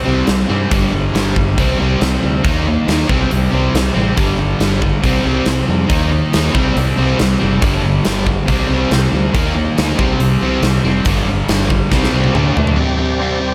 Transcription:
Already playing: C3 G3 C4
0.05 C2 C3 G3 C4
0.26 C2 C3 G3, snare, open hi-hat
0.48 G2 C3 G3 C4
0.52 C3
0.71 G1 G2 D3 G3, kick, open hi-hat
0.93 G1 G2 D3
1.14 G1 G2 D3 G3, snare, open hi-hat
1.36 G2 D3, kick
1.58 C2 C3 G3 C4, kick, open hi-hat
1.80 C2 C3 G3 C4
2.01 C2 C3 G3, snare, open hi-hat
2.23 D2 C3 G3
2.44 D#2 D#3 A#3 D#4, kick, open hi-hat
2.66 D#3 A#3
2.88 D#2 D#3 A#3 D#4, snare, open hi-hat
3.09 C2 C3 G3 C4, kick
3.31 C2 C3 G3, open hi-hat
3.51 C2 C3 G3 C4
3.74 C2 C3 G3, snare, open hi-hat
3.94 A1 C3 G3 C4
4.17 G1 G2 D3 G3, kick, open hi-hat
4.39 G1 G2 D3
4.59 G1 G2 D3 G3, snare, open hi-hat
4.82 G2 D3, kick
5.04 C2 C3 G3 C4, kick, open hi-hat
5.25 C2 C3 G3 C4
5.46 C2 C3 G3, snare, open hi-hat
5.68 F2 C3 G3
5.89 D#2 D#3 A#3 D#4, kick, open hi-hat
6.12 D#3 A#3
6.33 D#2 D#3 A#3 D#4, snare, open hi-hat
6.55 C2 C3 G3 C4, kick
6.76 C2 C3 G3, open hi-hat
6.98 C2 C3 G3 C4
7.19 C2 C3 G3, snare, open hi-hat
7.39 F#1 C3 G3 C4
7.62 G1 G2 D3 G3, kick, open hi-hat
7.84 G1 G2 D3
8.05 G1 G2 D3 G3, snare, open hi-hat
8.25 G2 D3, kick
8.29 D3
8.46 C2 C3 G3 C4, kick, open hi-hat
8.50 G3 C4
8.69 C2 C3 G3 C4
8.91 C2 C3 G3, snare, open hi-hat
9.13 D2 C3 G3
9.35 D#2 D#3 A#3 D#4, kick, open hi-hat
9.56 D#3 A#3
9.78 D2 D#3 A#3 D#4, snare, open hi-hat
9.99 C2 C3 G3 C4, kick
10.20 C2 C3 G3, open hi-hat
10.42 C2 C3 G3 C4
10.62 C2 C3 G3, snare, open hi-hat
10.84 F1 C3 G3 C4
11.05 G1 G2 D3 G3, kick, open hi-hat
11.25 G1 G2 D3
11.48 G1 G2 D3 G3, snare, open hi-hat
11.70 G2 D3, kick
11.92 C2 C3 G3 C4, kick, snare
12.04 snare
12.13 C2 C3 G3 C4
12.24 high tom
12.34 D2 D3 A3 D4, mid tom
12.56 D2 D3 A3, floor tom
12.67 floor tom
12.76 C3 G3 C4 G4 D5
12.80 C4
12.99 C3 G3 C4
13.20 C3 G3 C4
13.40 C3 G3 C4

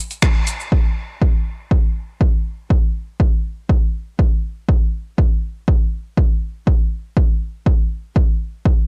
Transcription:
0.11 open hi-hat, cabasa
0.22 finger snap, kick, cabasa
0.47 open hi-hat, cabasa
0.60 cabasa
0.72 kick
1.22 kick
1.71 kick
2.21 kick
2.70 kick
3.20 kick
3.70 kick
4.19 kick
4.69 kick
5.18 kick
5.68 kick
6.17 kick
6.67 kick
7.17 kick
7.66 kick
8.16 kick
8.65 kick

